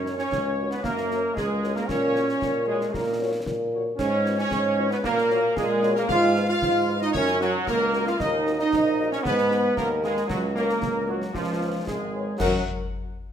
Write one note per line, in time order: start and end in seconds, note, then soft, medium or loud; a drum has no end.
0.00 0.23 F#2 loud
0.00 0.15 C#4 loud
0.00 0.15 C#4 medium
0.00 0.16 C#5 medium
0.00 0.17 C#5 medium
0.06 0.16 F#4 medium
0.06 0.16 A#4 medium
0.06 0.16 C#5 medium
0.06 snare medium
0.17 0.54 C#4 loud
0.17 0.67 C#4 loud
0.17 0.67 C#5 loud
0.17 0.68 C#5 loud
0.17 snare medium
0.32 0.76 C#2 medium
0.32 concert bass drum medium
0.32 snare medium
0.59 0.68 F#4 medium
0.59 0.68 A#4 medium
0.59 0.68 C#5 medium
0.69 0.82 B3 loud
0.69 0.78 B3 medium
0.69 0.85 B4 medium
0.69 snare medium
0.82 1.28 F#2 medium
0.82 1.32 A#3 loud
0.82 1.16 A#3 loud
0.82 1.33 A#4 loud
0.82 concert bass drum loud
0.82 snare medium
0.97 snare medium
1.10 1.20 F#4 medium
1.10 1.20 A#4 medium
1.10 1.20 C#5 medium
1.10 snare medium
1.35 1.81 C#2 medium
1.35 1.75 G#3 loud
1.35 1.78 G#3 loud
1.35 1.73 G#4 loud
1.35 concert bass drum medium
1.35 snare medium
1.63 1.73 F#4 medium
1.63 1.73 A#4 medium
1.63 1.73 C#5 medium
1.63 snare medium
1.74 1.88 A#3 loud
1.74 1.89 A#3 loud
1.74 1.88 A#4 medium
1.74 1.90 A#4 loud
1.74 snare medium
1.86 2.33 A#2 loud
1.86 2.67 C#4 loud
1.86 2.64 C#4 loud
1.86 2.64 C#5 loud
1.86 concert bass drum medium
1.86 snare medium
1.86 crash soft
2.15 2.25 F#4 medium
2.15 2.25 A#4 medium
2.15 2.25 C#5 medium
2.15 snare medium
2.29 snare medium
2.41 2.85 A#2 loud
2.41 concert bass drum medium
2.41 snare medium
2.67 2.92 G#3 loud
2.67 2.93 G#3 loud
2.67 2.77 F#4 medium
2.67 2.94 G#4 loud
2.67 2.80 G#4 medium
2.67 2.78 A#4 medium
2.67 2.78 C#5 medium
2.81 snare medium
2.92 3.38 A#2 loud
2.92 3.20 A#3 loud
2.92 3.19 A#3 medium
2.92 3.06 A#4 medium
2.92 concert bass drum medium
2.92 snare medium
2.97 3.20 A#4 medium
3.20 3.29 F#4 medium
3.20 3.30 A#4 medium
3.20 3.29 C#5 medium
3.46 3.90 A#2 loud
3.46 concert bass drum medium
3.46 snare medium
3.73 3.83 F#4 medium
3.73 3.82 A#4 medium
3.73 3.83 C#5 medium
3.97 4.43 G#2 loud
3.97 4.35 C#4 loud
3.97 4.36 C#4 loud
3.97 4.36 C#5 loud
3.97 4.37 C#5 loud
3.97 concert bass drum medium
3.97 snare medium
3.97 crash medium
4.25 4.35 F4 medium
4.25 4.35 B4 medium
4.25 4.35 C#5 medium
4.25 snare medium
4.37 4.92 C#4 loud
4.37 4.88 C#4 loud
4.37 4.87 C#5 loud
4.37 4.89 C#5 loud
4.37 snare medium
4.51 4.96 G#2 loud
4.51 concert bass drum medium
4.51 snare medium
4.77 4.87 F4 medium
4.77 4.87 B4 medium
4.77 4.87 C#5 medium
4.91 4.97 B3 loud
4.91 5.03 B3 loud
4.91 5.03 B4 loud
4.91 4.98 B4 loud
4.91 snare medium
5.03 5.49 A#2 loud
5.03 5.52 A#3 loud
5.03 5.53 A#3 loud
5.03 5.57 A#4 loud
5.03 5.53 A#4 loud
5.03 concert bass drum loud
5.03 snare medium
5.18 snare medium
5.29 5.39 F#4 medium
5.29 5.40 A#4 medium
5.29 5.39 C#5 medium
5.29 snare medium
5.56 6.01 A#2 loud
5.56 5.96 G#3 loud
5.56 5.93 G#3 loud
5.56 5.93 G#4 loud
5.56 5.96 G#4 loud
5.56 concert bass drum medium
5.56 snare medium
5.83 5.93 F#4 medium
5.83 5.93 A#4 medium
5.83 5.93 C#5 medium
5.83 snare medium
5.95 6.02 A#3 medium
5.95 6.09 A#3 loud
5.95 6.01 A#4 loud
5.95 6.09 A#4 medium
5.95 snare medium
6.08 6.54 G#2 loud
6.08 6.46 F4 loud
6.08 6.47 F4 loud
6.08 6.45 F5 loud
6.08 6.46 F5 loud
6.08 concert bass drum loud
6.08 snare loud
6.08 crash soft
6.36 6.46 F4 medium
6.36 6.46 B4 medium
6.36 snare medium
6.48 7.04 F4 loud
6.48 6.98 F4 loud
6.48 6.97 F5 loud
6.48 6.98 F5 loud
6.48 snare medium
6.62 7.06 G#2 loud
6.62 concert bass drum loud
6.62 snare medium
6.88 6.98 F4 medium
6.88 6.98 B4 medium
7.01 7.15 D#4 loud
7.01 7.16 D#4 loud
7.01 7.07 D#5 loud
7.01 7.08 D#5 loud
7.01 snare medium
7.12 7.55 F#2 loud
7.12 7.27 C#4 loud
7.12 7.38 C#5 loud
7.12 7.39 C#5 loud
7.12 concert bass drum loud
7.12 snare medium
7.17 7.40 C#4 loud
7.27 snare medium
7.40 7.70 F#3 loud
7.40 7.66 F#3 loud
7.40 7.65 F#4 loud
7.40 7.51 F#4 loud
7.40 7.53 F#4 loud
7.40 7.50 A#4 medium
7.40 snare medium
7.67 8.11 C#2 loud
7.67 8.07 A#3 loud
7.67 8.05 A#3 loud
7.67 8.03 A#4 loud
7.67 8.04 A#4 loud
7.67 concert bass drum medium
7.67 snare medium
7.93 8.04 F#4 medium
7.93 8.04 A#4 medium
7.93 snare medium
8.06 8.22 F4 loud
8.06 8.20 F4 loud
8.06 8.18 F5 loud
8.06 8.20 F5 loud
8.06 snare medium
8.18 8.64 D#2 loud
8.18 8.58 D#4 loud
8.18 8.59 D#4 loud
8.18 8.55 D#5 loud
8.18 8.57 D#5 loud
8.18 concert bass drum medium
8.18 snare medium
8.18 crash soft
8.46 8.56 F#4 medium
8.46 8.56 A#4 medium
8.46 snare medium
8.59 9.08 D#4 loud
8.59 9.08 D#5 loud
8.59 snare medium
8.72 9.16 A#1 loud
8.72 concert bass drum medium
8.72 snare medium
8.98 9.07 F#4 medium
8.98 9.08 A#4 medium
9.11 9.26 C#4 loud
9.11 9.24 C#4 loud
9.11 9.25 C#5 loud
9.11 9.18 C#5 loud
9.11 snare medium
9.23 9.69 G#2 loud
9.23 9.72 B3 loud
9.23 9.79 B3 loud
9.23 9.73 B4 loud
9.23 9.74 B4 loud
9.23 concert bass drum loud
9.23 snare medium
9.38 snare medium
9.50 9.60 G#4 medium
9.50 9.60 B4 medium
9.50 snare medium
9.77 10.21 D#2 loud
9.77 9.89 A#3 loud
9.77 10.05 A#3 loud
9.77 9.89 A#4 loud
9.77 concert bass drum medium
9.77 snare medium
10.04 10.30 G#3 loud
10.04 10.28 G#3 loud
10.04 10.28 G#4 loud
10.04 10.13 G#4 medium
10.04 10.28 G#4 medium
10.04 10.13 B4 medium
10.04 snare medium
10.17 snare medium
10.28 10.73 C#2 loud
10.28 10.40 F#3 loud
10.28 10.42 F#3 loud
10.28 10.54 F#4 loud
10.28 10.42 F#4 loud
10.28 concert bass drum medium
10.28 snare medium
10.28 crash soft
10.55 11.04 A#3 loud
10.55 11.05 A#3 loud
10.55 10.66 F#4 medium
10.55 11.04 A#4 loud
10.55 10.65 A#4 medium
10.55 11.05 A#4 loud
10.55 10.65 C#5 medium
10.55 snare medium
10.69 snare medium
10.82 11.26 C#2 loud
10.82 concert bass drum medium
10.82 snare medium
11.06 11.19 F#3 loud
11.06 11.34 F#3 loud
11.06 11.19 F#4 medium
11.06 11.17 F#4 medium
11.06 11.35 F#4 medium
11.06 11.18 A#4 medium
11.06 11.18 C#5 medium
11.22 snare medium
11.32 11.78 C#2 loud
11.32 11.82 F3 loud
11.32 11.66 F3 loud
11.32 11.84 F4 medium
11.32 11.88 F4 loud
11.32 concert bass drum medium
11.32 snare medium
11.61 11.71 G#4 medium
11.61 11.71 B4 medium
11.61 11.71 C#5 medium
11.84 12.31 G#1 medium
11.84 12.34 G#3 loud
11.84 12.36 G#3 medium
11.84 12.36 G#4 medium
11.84 concert bass drum medium
11.84 snare medium
12.14 12.23 G#4 medium
12.14 12.23 B4 medium
12.14 12.23 C#5 medium
12.38 12.62 F#2 loud
12.38 12.60 F#3 loud
12.38 12.62 F#3 loud
12.38 12.61 F#4 medium
12.38 12.61 A#4 medium
12.38 12.62 F#5 loud
12.38 concert bass drum loud
12.38 snare loud
12.38 crash loud